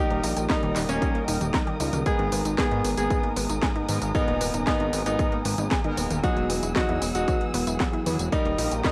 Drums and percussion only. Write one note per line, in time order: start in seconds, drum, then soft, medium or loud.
0.11 closed hi-hat soft
0.24 open hi-hat loud
0.24 tambourine medium
0.37 closed hi-hat medium
0.37 tambourine soft
0.50 kick loud
0.50 snare loud
0.50 clap medium
0.50 closed hi-hat soft
0.50 tambourine soft
0.63 closed hi-hat soft
0.63 high tom medium
0.76 clap medium
0.76 open hi-hat loud
0.76 tambourine medium
0.89 closed hi-hat soft
0.89 tambourine soft
1.02 kick loud
1.02 closed hi-hat soft
1.02 tambourine soft
1.15 closed hi-hat soft
1.28 open hi-hat loud
1.28 tambourine medium
1.41 closed hi-hat medium
1.41 high tom medium
1.41 tambourine soft
1.54 kick loud
1.54 snare loud
1.54 clap medium
1.54 closed hi-hat medium
1.54 tambourine soft
1.67 closed hi-hat soft
1.67 high tom medium
1.80 open hi-hat loud
1.80 tambourine medium
1.93 closed hi-hat medium
1.93 high tom medium
1.93 tambourine soft
2.06 kick loud
2.06 closed hi-hat medium
2.06 tambourine soft
2.19 closed hi-hat soft
2.32 open hi-hat loud
2.32 tambourine medium
2.45 closed hi-hat medium
2.45 tambourine soft
2.58 kick loud
2.58 snare loud
2.58 clap medium
2.58 closed hi-hat soft
2.58 tambourine soft
2.71 closed hi-hat soft
2.84 open hi-hat loud
2.84 tambourine medium
2.97 closed hi-hat medium
2.97 tambourine soft
3.10 kick loud
3.10 closed hi-hat medium
3.10 tambourine soft
3.23 closed hi-hat soft
3.36 open hi-hat loud
3.36 tambourine medium
3.50 closed hi-hat medium
3.50 tambourine soft
3.63 kick loud
3.63 snare loud
3.63 clap medium
3.63 closed hi-hat medium
3.63 tambourine soft
3.76 closed hi-hat soft
3.89 open hi-hat loud
3.89 high tom medium
3.89 tambourine medium
4.02 closed hi-hat medium
4.02 tambourine soft
4.15 kick loud
4.15 closed hi-hat medium
4.15 tambourine soft
4.28 closed hi-hat soft
4.41 open hi-hat loud
4.41 tambourine medium
4.54 closed hi-hat medium
4.54 tambourine soft
4.67 kick loud
4.67 snare loud
4.67 clap medium
4.67 closed hi-hat medium
4.67 tambourine soft
4.80 closed hi-hat soft
4.93 open hi-hat loud
4.93 tambourine medium
5.06 closed hi-hat medium
5.06 tambourine soft
5.19 kick loud
5.19 closed hi-hat medium
5.19 tambourine soft
5.32 closed hi-hat soft
5.45 open hi-hat loud
5.45 tambourine medium
5.58 closed hi-hat medium
5.58 high tom medium
5.58 tambourine soft
5.71 kick loud
5.71 snare loud
5.71 clap medium
5.71 closed hi-hat medium
5.71 tambourine soft
5.84 closed hi-hat soft
5.84 high tom medium
5.97 open hi-hat loud
5.97 tambourine medium
6.10 closed hi-hat medium
6.10 high tom medium
6.10 tambourine soft
6.24 kick loud
6.24 closed hi-hat medium
6.24 tambourine soft
6.37 closed hi-hat soft
6.50 open hi-hat loud
6.50 tambourine medium
6.63 closed hi-hat medium
6.63 tambourine soft
6.76 kick loud
6.76 snare loud
6.76 clap medium
6.76 closed hi-hat medium
6.76 tambourine soft
6.89 closed hi-hat soft
7.02 open hi-hat loud
7.02 tambourine medium
7.15 closed hi-hat medium
7.15 tambourine soft
7.28 kick loud
7.28 closed hi-hat medium
7.28 tambourine soft
7.41 closed hi-hat soft
7.54 open hi-hat loud
7.54 tambourine medium
7.67 closed hi-hat medium
7.67 tambourine soft
7.80 kick loud
7.80 snare loud
7.80 clap medium
7.80 closed hi-hat medium
7.80 tambourine soft
7.93 closed hi-hat soft
8.06 open hi-hat loud
8.06 high tom medium
8.06 tambourine medium
8.19 closed hi-hat medium
8.19 tambourine soft
8.32 kick loud
8.32 closed hi-hat medium
8.32 tambourine soft
8.45 closed hi-hat soft
8.58 open hi-hat loud
8.58 tambourine medium
8.71 closed hi-hat medium
8.71 tambourine soft
8.85 kick loud
8.85 snare loud
8.85 clap medium
8.85 closed hi-hat medium
8.85 tambourine soft